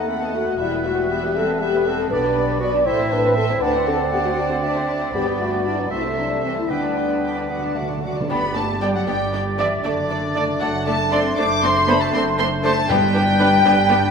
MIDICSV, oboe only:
0, 0, Header, 1, 2, 480
1, 0, Start_track
1, 0, Key_signature, 1, "major"
1, 0, Tempo, 505902
1, 567, Time_signature, 6, 3, 24, 8
1, 4884, Tempo, 523560
1, 8724, Tempo, 507614
1, 13235, End_track
2, 0, Start_track
2, 0, Title_t, "Oboe"
2, 0, Program_c, 0, 68
2, 0, Note_on_c, 0, 78, 74
2, 2004, Note_off_c, 0, 78, 0
2, 2019, Note_on_c, 0, 74, 76
2, 2468, Note_off_c, 0, 74, 0
2, 2718, Note_on_c, 0, 76, 81
2, 3398, Note_off_c, 0, 76, 0
2, 3431, Note_on_c, 0, 74, 93
2, 5550, Note_off_c, 0, 74, 0
2, 5581, Note_on_c, 0, 76, 76
2, 6306, Note_on_c, 0, 71, 59
2, 6320, Note_off_c, 0, 76, 0
2, 7405, Note_off_c, 0, 71, 0
2, 7770, Note_on_c, 0, 74, 72
2, 10616, Note_off_c, 0, 74, 0
2, 10660, Note_on_c, 0, 72, 76
2, 12085, Note_on_c, 0, 71, 91
2, 12099, Note_off_c, 0, 72, 0
2, 13235, Note_off_c, 0, 71, 0
2, 13235, End_track
0, 0, End_of_file